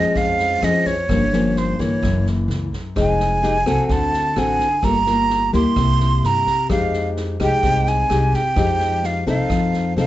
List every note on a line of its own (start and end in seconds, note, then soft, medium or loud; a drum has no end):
0.00 0.13 A#2 soft
0.00 0.59 F3 medium
0.00 0.59 G#3 medium
0.00 0.59 C#4 medium
0.00 0.18 D#5 loud
0.15 1.07 F2 medium
0.15 0.59 F2 medium
0.15 0.66 F5 loud
0.15 kick medium
0.15 snare soft
0.39 snare soft
0.62 0.84 F2 medium
0.62 0.92 F3 soft
0.62 0.93 G#3 medium
0.62 0.93 C#4 medium
0.62 0.88 D#5 medium
0.62 cross-stick medium
0.62 snare soft
0.86 1.59 C#5 medium
0.86 kick soft
0.86 snare soft
1.09 1.75 G1 medium
1.09 2.00 G2 medium
1.09 1.23 F3 soft
1.09 1.23 A#3 medium
1.09 1.23 C#4 medium
1.09 kick medium
1.09 cross-stick medium
1.09 snare soft
1.33 1.76 F3 medium
1.33 1.76 A#3 medium
1.33 1.76 C#4 medium
1.33 snare soft
1.56 1.82 C5 medium
1.56 snare soft
1.79 1.90 G1 medium
1.79 2.69 E3 medium
1.79 2.69 A#3 medium
1.79 2.26 C#5 medium
1.79 kick soft
1.79 snare soft
2.02 2.46 F#1 medium
2.02 2.94 F#2 medium
2.02 kick medium
2.02 cross-stick medium
2.02 snare soft
2.26 snare soft
2.48 2.70 C#2 medium
2.48 snare soft
2.73 kick soft
2.73 snare soft
2.96 3.62 F1 medium
2.96 3.87 F3 medium
2.96 3.39 G#3 medium
2.96 3.39 D#4 medium
2.96 kick medium
2.96 cross-stick medium
2.96 snare soft
3.01 3.94 G#5 loud
3.20 snare soft
3.42 3.56 G#3 medium
3.42 3.57 D#4 medium
3.42 3.57 G4 medium
3.42 snare soft
3.66 3.77 C2 medium
3.66 4.32 C4 medium
3.66 4.33 F#4 medium
3.66 4.33 A4 medium
3.66 kick soft
3.66 cross-stick medium
3.66 snare soft
3.89 4.33 D2 medium
3.89 4.81 D3 medium
3.89 4.40 A5 medium
3.89 kick medium
3.89 snare soft
4.13 snare soft
4.36 4.58 A1 medium
4.36 4.66 C4 medium
4.36 4.67 F#4 medium
4.36 4.67 A4 medium
4.36 4.86 G#5 medium
4.36 cross-stick medium
4.36 snare soft
4.59 kick soft
4.59 snare soft
4.83 5.49 G1 medium
4.83 5.74 G3 medium
4.83 4.97 A#3 medium
4.83 4.97 F4 medium
4.83 4.97 A4 medium
4.83 5.54 A#5 loud
4.83 kick medium
4.83 cross-stick medium
4.83 snare soft
5.06 5.50 A#3 medium
5.06 5.50 F4 medium
5.06 snare soft
5.30 snare soft
5.53 5.64 D2 medium
5.53 6.43 A#3 medium
5.53 6.43 E4 medium
5.53 6.43 G4 medium
5.53 6.27 C6 loud
5.53 kick soft
5.53 snare soft
5.76 6.20 C2 medium
5.76 6.68 C3 medium
5.76 kick medium
5.76 cross-stick medium
5.76 snare soft
6.00 snare soft
6.23 6.45 G2 medium
6.23 6.70 A#5 medium
6.23 snare soft
6.46 kick soft
6.46 snare soft
6.69 7.36 F2 medium
6.69 7.61 F3 medium
6.69 7.36 G#3 medium
6.69 7.36 D#4 soft
6.69 7.36 G4 medium
6.69 7.10 F5 medium
6.69 kick medium
6.69 cross-stick medium
6.69 snare soft
6.93 snare soft
7.16 snare soft
7.40 7.51 C2 medium
7.40 8.06 G#3 medium
7.40 8.06 D#4 medium
7.40 8.06 G4 medium
7.40 7.90 G5 loud
7.40 kick soft
7.40 cross-stick medium
7.40 snare soft
7.63 8.07 C2 medium
7.63 8.54 C3 medium
7.63 kick medium
7.63 snare soft
7.86 8.37 G#5 loud
7.86 snare soft
8.10 8.31 C2 medium
8.10 8.40 G#3 medium
8.10 8.40 D#4 medium
8.10 8.40 G4 medium
8.10 cross-stick medium
8.10 snare soft
8.33 9.07 G5 loud
8.33 kick soft
8.33 snare soft
8.56 9.22 F2 medium
8.56 9.47 F3 medium
8.56 9.23 G#3 medium
8.56 9.23 D#4 medium
8.56 9.23 G4 medium
8.56 kick medium
8.56 cross-stick medium
8.56 snare soft
8.80 snare soft
9.03 9.28 F5 medium
9.03 snare soft
9.27 9.37 C2 medium
9.27 9.93 C4 medium
9.27 9.93 D#4 medium
9.27 9.93 A4 medium
9.27 9.94 F5 medium
9.27 kick soft
9.27 snare soft
9.50 9.93 F2 medium
9.50 10.07 F3 medium
9.50 kick medium
9.50 cross-stick medium
9.50 snare soft
9.73 snare soft
9.96 10.07 C2 medium
9.96 10.07 C4 soft
9.96 10.07 D#4 medium
9.96 10.07 A4 medium
9.96 10.07 F5 medium
9.96 snare soft